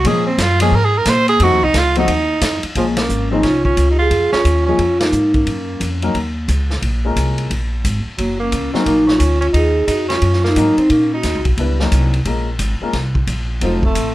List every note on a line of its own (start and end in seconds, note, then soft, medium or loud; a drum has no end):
0.04 0.38 A#2 medium
0.04 0.25 F3 medium
0.04 0.25 G#3 medium
0.04 0.25 A#3 medium
0.04 0.25 C#4 medium
0.04 0.25 G#4 medium
0.04 0.26 G#4 loud
0.04 kick soft
0.04 ride medium
0.27 0.43 C4 medium
0.38 0.71 F#2 loud
0.38 0.61 F4 loud
0.38 kick soft
0.38 snare medium
0.38 hi-hat pedal medium
0.38 ride medium
0.60 0.72 F3 medium
0.60 0.72 G#3 medium
0.60 0.72 A#3 medium
0.60 0.72 C#4 medium
0.60 0.77 G#4 medium
0.60 0.72 G#4 loud
0.60 ride medium
0.72 1.05 G#2 medium
0.72 0.86 A#4 loud
0.72 kick soft
0.85 0.99 G#4 loud
0.97 1.11 A#4 loud
1.05 1.39 A#2 loud
1.05 kick soft
1.05 snare medium
1.05 hi-hat pedal medium
1.05 ride medium
1.10 1.28 C5 loud
1.28 1.45 G#4 loud
1.28 ride soft
1.40 1.51 F2 medium
1.40 1.60 F3 medium
1.40 1.60 A3 medium
1.40 1.61 C4 medium
1.40 1.61 D#4 medium
1.40 1.61 F#4 medium
1.40 1.65 F#4 loud
1.40 kick soft
1.40 ride medium
1.51 1.61 D#2 medium
1.62 1.73 C2 medium
1.62 1.80 D#4 loud
1.74 2.07 C#2 medium
1.74 kick soft
1.74 snare medium
1.74 hi-hat pedal medium
1.74 ride medium
1.78 1.98 F4 loud
1.95 2.07 F3 medium
1.95 2.07 A3 medium
1.95 2.07 C4 medium
1.95 2.08 D#4 medium
1.95 2.67 D#4 medium
1.95 2.08 F#4 medium
1.95 ride medium
2.08 2.41 D#2 medium
2.08 kick soft
2.08 ride medium
2.41 2.62 F2 medium
2.41 kick soft
2.41 snare medium
2.41 hi-hat pedal medium
2.41 ride medium
2.63 muted upright bass stroke soft
2.63 ride medium
2.75 3.08 A#1 medium
2.75 2.95 F3 medium
2.75 2.86 F3 medium
2.75 2.95 G#3 medium
2.75 2.96 A#3 medium
2.75 2.87 A#3 medium
2.75 2.96 C#4 medium
2.75 2.96 G#4 medium
2.75 kick soft
2.75 ride medium
2.97 3.30 A#3 medium
2.97 3.30 C#4 medium
2.97 snare medium
2.97 ride medium
3.09 3.42 G#1 medium
3.09 hi-hat pedal medium
3.31 3.42 F3 medium
3.31 3.42 G#3 medium
3.31 3.43 A#3 medium
3.31 3.42 C4 medium
3.31 3.43 C#4 medium
3.31 3.43 D#4 medium
3.31 3.45 D#4 medium
3.43 3.76 C2 medium
3.43 3.63 C#4 medium
3.43 3.65 F4 medium
3.43 kick soft
3.43 snare soft
3.43 ride medium
3.65 3.88 C#4 medium
3.65 3.91 F4 medium
3.65 kick medium
3.77 4.10 C#2 medium
3.77 kick soft
3.77 hi-hat pedal soft
3.77 ride medium
3.91 3.98 D#4 medium
3.91 4.00 G4 medium
3.98 4.30 F4 medium
3.98 4.35 G#4 loud
4.11 4.31 F2 medium
4.11 kick soft
4.11 ride medium
4.32 4.64 C#4 medium
4.32 4.66 F4 loud
4.32 muted upright bass stroke soft
4.32 snare medium
4.45 4.78 D#2 medium
4.45 kick soft
4.45 hi-hat pedal medium
4.45 ride medium
4.66 4.78 F3 medium
4.66 4.79 G#3 medium
4.66 4.79 A#3 medium
4.66 4.98 C#4 medium
4.66 4.79 C#4 medium
4.66 5.02 F4 medium
4.66 4.79 G#4 medium
4.78 5.12 F2 medium
4.78 kick soft
4.78 ride medium
5.00 5.32 A#3 medium
5.00 5.36 D#4 medium
5.00 snare medium
5.00 ride medium
5.12 5.46 G#2 medium
5.12 hi-hat pedal medium
5.34 5.98 A#3 medium
5.34 5.99 C#4 medium
5.34 kick medium
5.34 ride soft
5.46 5.80 F#2 medium
5.46 kick soft
5.46 ride medium
5.80 6.14 F2 medium
5.80 kick soft
5.80 hi-hat pedal soft
5.80 ride medium
6.02 6.14 F#3 medium
6.02 6.14 A#3 medium
6.02 6.14 C#4 medium
6.02 6.14 D#4 medium
6.02 6.15 A#4 medium
6.02 ride soft
6.14 6.48 D#2 medium
6.14 kick soft
6.14 ride medium
6.48 6.81 C#2 medium
6.48 kick soft
6.48 hi-hat pedal medium
6.48 ride medium
6.70 snare soft
6.82 7.15 A#1 medium
6.82 kick soft
6.82 ride medium
7.05 7.48 G#3 medium
7.05 7.49 A#3 medium
7.05 7.49 C#4 medium
7.05 7.49 F4 medium
7.05 7.49 A#4 medium
7.16 7.49 C2 medium
7.16 kick soft
7.16 hi-hat pedal medium
7.16 ride medium
7.38 ride soft
7.50 7.83 A#1 medium
7.50 kick soft
7.50 ride medium
7.85 8.05 G#1 medium
7.85 kick soft
7.85 hi-hat pedal soft
7.85 ride medium
8.06 muted upright bass stroke soft
8.18 8.51 F#1 medium
8.18 8.39 F#3 medium
8.18 8.42 A#3 medium
8.18 kick soft
8.18 ride medium
8.40 8.71 A#3 medium
8.40 8.76 C#4 medium
8.52 8.72 C#2 medium
8.52 kick soft
8.52 hi-hat pedal medium
8.52 ride medium
8.73 9.18 F#3 medium
8.73 9.18 A#3 medium
8.73 8.85 C4 medium
8.73 9.18 C#4 medium
8.73 9.18 D#4 medium
8.73 8.87 D#4 medium
8.73 9.19 A#4 medium
8.73 snare soft
8.86 9.19 A#1 medium
8.86 9.06 A#3 medium
8.86 9.10 D#4 medium
8.86 kick soft
8.86 ride medium
9.07 9.18 C#4 medium
9.07 9.21 F4 medium
9.07 snare medium
9.18 9.53 D2 medium
9.18 9.39 C#4 medium
9.18 kick soft
9.18 hi-hat pedal medium
9.18 ride medium
9.22 9.43 F4 medium
9.41 9.47 C#4 medium
9.41 9.49 F4 medium
9.41 ride soft
9.53 9.87 D#2 medium
9.53 9.85 D#4 medium
9.53 9.90 G#4 loud
9.53 kick soft
9.53 ride medium
9.88 10.21 F2 medium
9.88 10.08 D#4 medium
9.88 10.09 F#4 medium
9.88 kick soft
9.88 hi-hat pedal medium
9.88 ride medium
10.09 10.41 C#4 medium
10.09 snare medium
10.09 ride soft
10.13 10.46 F4 loud
10.22 10.55 F#2 medium
10.22 kick soft
10.22 ride medium
10.33 snare soft
10.44 10.75 A#3 medium
10.44 10.80 D#4 medium
10.44 snare soft
10.56 10.76 G#2 medium
10.56 10.76 F#3 medium
10.56 10.76 A#3 medium
10.56 10.76 C#4 medium
10.56 10.76 D#4 medium
10.56 10.76 A#4 medium
10.56 kick soft
10.56 hi-hat pedal medium
10.56 ride medium
10.77 10.90 C4 medium
10.77 10.92 D#4 medium
10.77 muted upright bass stroke soft
10.77 ride soft
10.90 11.23 A#2 medium
10.90 11.11 A#3 medium
10.90 11.14 C#4 medium
10.90 kick soft
10.90 ride medium
11.14 11.44 D#4 medium
11.14 11.45 F#4 medium
11.23 11.35 D#2 medium
11.23 kick soft
11.23 snare soft
11.23 hi-hat pedal medium
11.23 ride medium
11.35 11.45 C#2 medium
11.45 11.57 A#1 medium
11.45 kick medium
11.45 ride soft
11.57 11.90 C#2 medium
11.57 11.78 G3 medium
11.57 11.78 B3 medium
11.57 11.78 D4 medium
11.57 11.78 E4 medium
11.57 11.78 B4 medium
11.57 kick soft
11.57 ride medium
11.80 12.09 F#3 medium
11.80 12.09 A#3 medium
11.80 12.10 C#4 medium
11.80 12.10 D#4 medium
11.80 12.10 A#4 medium
11.80 snare soft
11.92 12.25 C2 medium
11.92 kick soft
11.92 hi-hat pedal medium
11.92 ride medium
12.14 ride soft
12.25 12.58 A#1 medium
12.25 12.45 G#3 medium
12.25 12.45 A#3 medium
12.25 12.46 C#4 soft
12.25 12.46 F4 soft
12.25 12.46 A#4 medium
12.25 kick soft
12.25 ride medium
12.59 12.79 G#1 medium
12.59 kick soft
12.59 hi-hat pedal medium
12.59 ride medium
12.81 12.93 G#3 medium
12.81 12.93 A#3 medium
12.81 12.93 C#4 medium
12.81 12.93 F4 medium
12.81 12.93 A#4 medium
12.81 muted upright bass stroke soft
12.93 13.26 C2 medium
12.93 kick soft
12.93 snare soft
12.93 ride medium
13.15 kick medium
13.27 13.60 A#1 medium
13.27 kick soft
13.27 hi-hat pedal soft
13.27 ride medium
13.61 13.94 F1 medium
13.61 13.82 F3 medium
13.61 13.81 F#3 medium
13.61 13.81 C4 soft
13.61 13.81 D#4 medium
13.61 13.81 F4 soft
13.61 13.82 A4 medium
13.61 kick soft
13.61 ride medium
13.65 13.84 A3 medium
13.83 14.15 A3 medium
13.83 14.15 C4 medium
13.83 kick medium
13.95 14.15 A1 medium
13.95 hi-hat pedal medium
13.95 ride medium